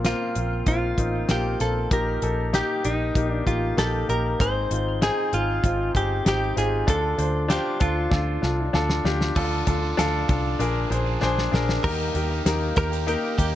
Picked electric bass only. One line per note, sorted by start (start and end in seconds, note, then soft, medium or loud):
0.00 0.12 A#1 medium
0.36 0.62 A#1 medium
0.67 0.92 A#1 medium
0.98 1.23 A1 medium
1.29 1.55 A#1 medium
1.60 1.86 A#1 medium
1.91 2.17 A#1 medium
2.23 2.61 A#1 loud
2.85 3.10 A#1 medium
3.15 3.41 A#1 medium
3.47 3.72 A1 medium
3.77 4.03 A#1 medium
4.09 4.34 A#1 medium
4.40 4.65 G#1 medium
4.71 5.09 G#1 medium
5.33 5.58 G#1 medium
5.64 5.89 G#1 medium
5.95 6.20 G1 medium
6.26 6.51 G#1 medium
6.57 6.82 G#1 medium
6.88 7.13 D2 medium
7.18 7.57 D2 medium
7.81 8.06 D2 medium
8.11 8.37 D2 medium
8.43 8.68 C2 medium
8.74 8.99 D2 medium
9.04 9.30 D2 medium
9.36 9.61 D2 loud
9.67 9.93 D2 medium
9.98 10.23 D2 medium
10.29 10.54 C2 medium
10.59 10.85 A#1 medium
10.91 11.16 A#1 loud
11.22 11.47 A#1 medium
11.53 11.78 A#1 medium
11.84 12.09 D#2 loud
12.15 12.40 D#2 loud
12.46 12.71 D#2 loud
12.77 13.15 D#2 medium
13.39 13.55 D#2 loud